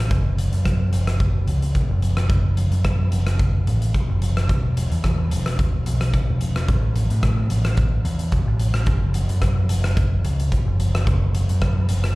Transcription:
0.11 F#1, kick, closed hi-hat
0.38 closed hi-hat
0.53 F#2, closed hi-hat
0.65 kick, cross-stick, closed hi-hat
0.92 F#1, closed hi-hat
1.07 cross-stick, closed hi-hat
1.20 kick, closed hi-hat
1.47 C#2, closed hi-hat
1.62 closed hi-hat
1.75 kick, closed hi-hat
1.90 F#1
2.02 closed hi-hat
2.17 cross-stick, closed hi-hat
2.30 F#1, kick, closed hi-hat
2.57 closed hi-hat
2.71 F#2, closed hi-hat
2.85 kick, cross-stick, closed hi-hat
3.11 F#1, closed hi-hat
3.27 cross-stick, closed hi-hat
3.39 kick, closed hi-hat
3.67 A1, closed hi-hat
3.82 closed hi-hat
3.94 kick, closed hi-hat
4.08 F#1
4.22 closed hi-hat
4.37 cross-stick, closed hi-hat
4.49 E1, kick, closed hi-hat
4.77 closed hi-hat
4.91 E2, closed hi-hat
5.04 kick, cross-stick, closed hi-hat
5.31 E1, closed hi-hat
5.46 cross-stick, closed hi-hat
5.59 kick, closed hi-hat
5.86 B1, closed hi-hat
6.01 cross-stick, closed hi-hat
6.13 kick, closed hi-hat
6.29 E1
6.41 closed hi-hat
6.56 cross-stick, closed hi-hat
6.68 A1, kick, closed hi-hat
6.96 closed hi-hat
7.10 A2, closed hi-hat
7.23 kick, cross-stick, closed hi-hat
7.50 A1, closed hi-hat
7.65 cross-stick, closed hi-hat
7.77 kick, closed hi-hat
8.05 E2, closed hi-hat
8.19 closed hi-hat
8.32 kick, closed hi-hat
8.47 A1
8.60 closed hi-hat
8.74 cross-stick, closed hi-hat
8.86 F#1, kick, closed hi-hat
9.14 closed hi-hat
9.29 F#2, closed hi-hat
9.42 kick, cross-stick, closed hi-hat
9.69 F#1, closed hi-hat
9.84 cross-stick, closed hi-hat
9.97 kick, closed hi-hat
10.24 C#2, closed hi-hat
10.40 closed hi-hat
10.52 kick, closed hi-hat
10.67 F#1
10.80 closed hi-hat
10.95 cross-stick, closed hi-hat
11.07 F#1, kick, closed hi-hat
11.35 closed hi-hat
11.49 F#2, closed hi-hat
11.62 kick, cross-stick, closed hi-hat
11.89 F#1, closed hi-hat
12.04 cross-stick, closed hi-hat

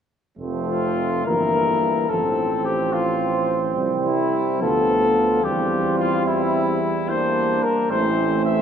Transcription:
0.38 F1 F3 A3 C4
0.67 F4
1.25 G1 E3 A#3 E4 A#4
2.09 A1 F3 C4 A4
2.65 G4
2.92 F4
3.76 C2 G3
4.05 E4
4.61 D2 F3 B3 F4 A4
5.44 E2 G3 C4 G4
5.99 F4
6.26 E4
7.09 A#3 D4 C5
7.63 A#4
7.90 A1 E3 A3 C4 C5
8.45 E5

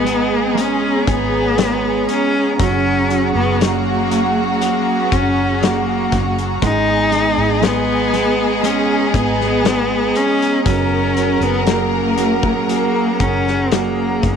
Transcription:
Already playing: G#1 G#3 B3 G#4 D#5 A#5
0.04 G#3, closed hi-hat
0.55 G#3 C#4 C#5, closed hi-hat
1.07 G#1 B3, kick, closed hi-hat
1.57 G#3, snare, closed hi-hat
2.09 C#4, closed hi-hat
2.59 F#1 F#3 C#4 F#4 F#5, kick, closed hi-hat
3.10 F#3, closed hi-hat
3.35 F#1 B3
3.61 F#3 A#3, snare, closed hi-hat
4.10 F#3, closed hi-hat
4.60 F#3 A#3, closed hi-hat
5.12 F#1 C#4, kick, closed hi-hat
5.61 F#3 A#3, snare, closed hi-hat
6.12 F#1, kick, closed hi-hat
6.38 closed hi-hat
6.61 G#1 G#3 B3 D#4 G#4 D#5 A#5, kick, closed hi-hat
7.12 G#3, closed hi-hat
7.38 G#1
7.61 G#3 B3, snare, closed hi-hat
8.14 G#3, closed hi-hat
8.63 G#3 C#4, closed hi-hat
9.14 G#1 B3, kick, closed hi-hat
9.41 snare
9.64 G#3, snare, closed hi-hat
10.15 C#4, closed hi-hat
10.42 closed hi-hat
10.65 F#1 F#3 C#4 A#4 F#5, kick, closed hi-hat
11.16 F#3, closed hi-hat
11.40 F#1 B3, closed hi-hat
11.66 F#3 A#3, snare, closed hi-hat
12.17 F#3, closed hi-hat
12.43 kick
12.67 F#3 A#3, closed hi-hat
13.20 F#1 C#4, kick, closed hi-hat
13.48 snare
13.71 F#3 A#3, snare, closed hi-hat
14.23 F#1, kick, closed hi-hat

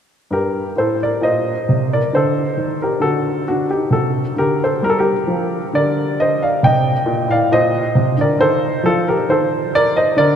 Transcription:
0.31 G2 G4 A#4
0.76 A2 A4 C5
1.03 A#4 D5
1.21 A#2 C5 D#5
1.69 C3
1.93 A#4 D5
2.13 D3 A4 C5
2.57 D#3
2.82 G4 A#4
3.00 D3 F#4 A4
3.48 D4 F#4
3.71 D#4 G4
3.90 C3 F#4 A4
4.36 D3 G4 A#4
4.64 A4 C5
4.83 G3 A#4
4.90 A4
4.99 G4 A#4
5.27 F3
5.73 D3 A#4 D5
6.20 C5 D#5
6.43 D5 F5
6.63 C3 D#5 G5
7.06 A#2
7.27 A2 F5
7.32 D5
7.52 A#2 C5 D#5
7.95 C3
8.18 D3 A#4 D5
8.39 D#3 A4 C5
8.84 F3 F4 A4
9.08 G4 A#4
9.29 D#3 A4 C5
9.75 A#4 D5
9.97 C5 D#5
10.17 D3 A#4 D5

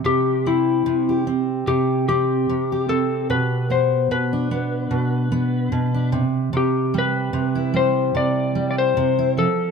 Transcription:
0.05 C3 G4
0.46 C4 E4
0.86 C3
1.09 G4
1.27 C4
1.67 C3 G4
2.09 C4 G4
2.49 C3
2.72 G4
2.89 C4 A4
3.30 B2 B4
3.70 B3 C5
4.11 B2 B4
4.33 D4
4.51 B3
4.91 B2
5.32 B3
5.72 B2
5.94 D4
6.12 C3
6.53 C3 G4
6.94 G3
6.98 B4
7.33 C3
7.55 E4
7.74 G3 C5
8.15 C3 D5
8.55 G3
8.71 D5
8.78 C5
8.97 C3
9.19 E4
9.37 F3 A4

